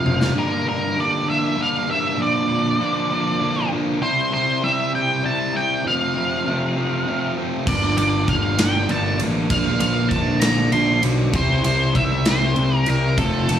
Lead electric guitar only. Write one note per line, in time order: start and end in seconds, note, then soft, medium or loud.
0.00 0.33 F5 medium
0.39 0.67 A#4 medium
0.69 0.99 A#4 medium
1.00 1.29 D5 medium
1.30 1.60 E5 loud
1.62 1.90 F5 loud
1.91 2.21 E5 loud
2.22 3.68 D5 medium
4.03 4.33 C5 medium
4.34 4.61 C5 loud
4.64 4.91 E5 medium
4.95 5.25 G5 loud
5.26 5.56 A5 medium
5.57 5.84 G5 loud
5.87 7.34 F5 medium
7.68 7.97 D5 medium
7.98 8.29 D5 medium
8.29 8.60 F5 medium
8.60 8.91 G5 loud
8.91 9.19 A5 medium
9.51 9.79 F5 medium
9.81 10.09 F5 medium
10.08 10.42 A5 medium
10.40 10.70 A#5 loud
10.72 11.01 C6 medium
11.36 11.63 C5 loud
11.65 11.96 C5 medium
11.96 12.27 E5 loud
12.28 12.76 C5 loud
12.76 12.90 A#4 loud
12.90 13.19 A#4 loud
13.19 13.59 A4 medium